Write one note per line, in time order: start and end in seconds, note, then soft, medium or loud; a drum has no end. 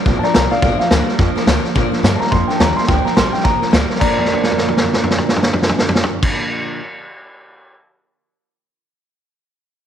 0.04 0.22 A#1 medium
0.04 0.32 A#2 medium
0.04 0.22 F3 medium
0.04 0.22 A#3 medium
0.04 0.22 D4 medium
0.04 0.21 A#4 medium
0.04 kick loud
0.04 snare soft
0.19 0.34 D4 medium
0.19 0.33 A#4 medium
0.19 0.21 A5 medium
0.23 0.33 F3 soft
0.23 0.34 A#3 medium
0.23 0.33 D5 medium
0.23 0.33 A#5 loud
0.23 muted upright bass stroke medium
0.23 snare soft
0.34 0.51 C2 medium
0.34 0.51 A#2 medium
0.34 0.51 D3 medium
0.34 0.51 F3 medium
0.34 0.51 A#3 medium
0.34 0.50 D4 medium
0.34 0.49 A#4 medium
0.34 0.50 D5 medium
0.34 0.51 A#5 medium
0.34 snare loud
0.34 hi-hat pedal medium
0.50 0.61 F3 soft
0.50 0.62 A#3 medium
0.50 0.62 D4 medium
0.50 0.61 A#4 medium
0.50 0.60 D5 medium
0.50 0.61 F5 medium
0.50 muted upright bass stroke medium
0.50 snare soft
0.62 0.79 A#1 medium
0.62 0.79 A#2 medium
0.62 0.79 D3 medium
0.62 0.79 F3 medium
0.62 0.79 A#3 medium
0.62 0.79 D4 medium
0.62 0.78 A#4 loud
0.62 0.78 D5 medium
0.62 0.78 F5 medium
0.62 kick loud
0.62 snare soft
0.75 0.77 E5 medium
0.79 0.91 F3 soft
0.79 0.91 A#3 soft
0.79 0.91 D4 medium
0.79 0.90 A#4 medium
0.79 1.06 F5 loud
0.79 muted upright bass stroke medium
0.79 snare soft
0.91 1.07 D2 loud
0.91 1.08 A#2 medium
0.91 1.08 D3 medium
0.91 1.08 F3 medium
0.91 1.17 G3 loud
0.91 1.08 A#3 medium
0.91 1.07 D4 medium
0.91 1.07 A#4 medium
0.91 snare loud
0.91 hi-hat pedal medium
1.07 1.17 F3 soft
1.07 1.18 A#3 soft
1.07 1.19 D4 soft
1.07 1.19 A#4 medium
1.07 muted upright bass stroke medium
1.07 snare soft
1.18 1.35 F2 medium
1.18 1.45 A#2 medium
1.18 1.35 F3 medium
1.18 1.36 A#3 medium
1.18 1.35 D4 medium
1.18 1.34 A#4 medium
1.18 kick loud
1.18 snare soft
1.35 1.46 F3 soft
1.35 1.47 A#3 medium
1.35 1.47 D4 medium
1.35 1.47 A#4 medium
1.35 muted upright bass stroke medium
1.35 snare soft
1.46 1.63 D2 medium
1.46 1.64 A#2 medium
1.46 1.64 D3 medium
1.46 1.64 F3 medium
1.46 1.64 A#3 medium
1.46 1.62 D4 medium
1.46 1.61 A#4 medium
1.46 snare loud
1.46 hi-hat pedal medium
1.62 1.74 F3 medium
1.62 1.75 A#3 medium
1.62 1.75 D4 medium
1.62 1.74 A#4 medium
1.62 muted upright bass stroke medium
1.62 snare soft
1.74 1.92 A#2 medium
1.74 1.91 A#2 medium
1.74 1.92 D3 medium
1.74 1.92 F3 medium
1.74 1.92 A#3 medium
1.74 1.91 D4 loud
1.74 1.90 A#4 medium
1.74 kick loud
1.74 snare soft
1.91 2.03 F3 soft
1.91 2.03 A#3 medium
1.91 2.03 D4 medium
1.91 2.03 A#4 medium
1.91 muted upright bass stroke medium
1.91 snare soft
2.03 2.20 G2 medium
2.03 2.20 A#2 medium
2.03 2.21 D3 medium
2.03 2.21 F3 medium
2.03 2.30 G3 medium
2.03 2.21 A#3 medium
2.03 2.21 D4 loud
2.03 2.20 A#4 medium
2.03 snare loud
2.03 hi-hat pedal medium
2.16 2.18 A5 medium
2.16 2.31 A#5 medium
2.21 2.30 F3 soft
2.21 2.31 A#3 soft
2.21 2.32 D4 medium
2.21 2.32 A#4 medium
2.21 muted upright bass stroke medium
2.21 snare soft
2.26 snare soft
2.31 2.48 F2 medium
2.31 2.58 A#2 medium
2.31 2.48 F3 medium
2.31 2.49 A#3 medium
2.31 2.48 D4 medium
2.31 2.47 A#4 medium
2.31 2.48 C6 medium
2.31 kick loud
2.31 snare soft
2.48 2.59 F3 soft
2.48 2.59 A#3 soft
2.48 2.60 D4 medium
2.48 2.59 A#4 medium
2.48 2.59 G5 medium
2.48 muted upright bass stroke medium
2.48 snare soft
2.56 2.76 D#2 medium
2.56 2.76 A#2 medium
2.56 2.58 A5 medium
2.60 2.77 D3 medium
2.60 2.77 F3 medium
2.60 2.86 G3 medium
2.60 2.77 A#3 medium
2.60 2.77 D4 medium
2.60 2.76 A#4 medium
2.60 2.77 A#5 medium
2.60 snare loud
2.60 hi-hat pedal medium
2.76 2.88 F3 soft
2.76 2.88 A#3 soft
2.76 2.88 D4 medium
2.76 2.88 A#4 medium
2.76 2.87 C6 medium
2.76 muted upright bass stroke medium
2.76 snare soft
2.83 snare soft
2.88 3.05 D2 medium
2.88 3.05 A#2 medium
2.88 3.06 D3 medium
2.88 3.06 F3 medium
2.88 3.06 A#3 medium
2.88 3.05 D4 medium
2.88 3.04 A#4 medium
2.88 3.05 G5 medium
2.88 kick loud
2.88 snare soft
3.05 3.15 F3 soft
3.05 3.16 A#3 medium
3.05 3.16 D4 medium
3.05 3.16 A#4 medium
3.05 3.16 A#5 medium
3.05 muted upright bass stroke medium
3.05 snare soft
3.16 3.33 A#1 medium
3.16 3.33 A#2 medium
3.16 3.33 D3 medium
3.16 3.34 F3 medium
3.16 3.43 G3 loud
3.16 3.33 A#3 medium
3.16 3.32 D4 medium
3.16 3.31 A#4 medium
3.16 3.33 C6 medium
3.16 snare loud
3.16 hi-hat pedal medium
3.32 3.42 F3 soft
3.32 3.44 A#3 soft
3.32 3.44 D4 medium
3.32 3.44 A#4 medium
3.32 3.44 G5 medium
3.32 muted upright bass stroke medium
3.32 snare soft
3.40 3.61 F3 medium
3.40 snare soft
3.44 3.61 C2 medium
3.44 3.71 A#2 medium
3.44 3.61 A#3 medium
3.44 3.60 D4 medium
3.44 3.59 A#4 medium
3.44 3.72 A#5 loud
3.44 kick loud
3.44 snare soft
3.60 3.70 F3 soft
3.60 3.71 A#3 soft
3.60 3.71 D4 medium
3.60 3.72 A#4 medium
3.60 muted upright bass stroke soft
3.60 snare soft
3.71 3.89 D2 medium
3.71 3.89 A#2 medium
3.71 3.89 D3 medium
3.71 3.89 F3 medium
3.71 3.99 G3 medium
3.71 3.89 A#3 medium
3.71 3.88 D4 medium
3.71 3.87 A#4 medium
3.71 snare loud
3.71 hi-hat pedal medium
3.88 4.00 F3 medium
3.88 4.01 A#3 medium
3.88 4.01 D4 medium
3.88 4.00 A#4 medium
3.88 muted upright bass stroke medium
3.88 snare soft
3.96 6.80 A#2 medium
3.96 6.80 D3 medium
3.96 snare soft
4.00 6.23 A#1 medium
4.00 6.79 A#2 medium
4.00 6.80 F3 medium
4.00 6.22 D5 medium
4.00 6.22 A#5 medium
4.00 kick loud
4.00 crash loud
4.04 6.80 A#3 medium
4.04 6.80 D4 medium
4.08 6.80 A#4 medium
4.18 floor tom soft
4.25 snare soft
4.33 floor tom medium
4.43 snare medium
4.51 floor tom medium
4.58 snare medium
4.68 floor tom medium
4.77 snare medium
4.84 floor tom medium
4.93 snare medium
5.04 floor tom medium
5.10 snare medium
5.18 floor tom medium
5.29 snare medium
5.36 floor tom medium
5.43 snare medium
5.53 floor tom medium
5.62 snare medium
5.69 floor tom medium
5.79 snare medium
5.89 floor tom medium
5.95 snare medium
6.03 floor tom medium
6.23 kick loud
6.23 crash loud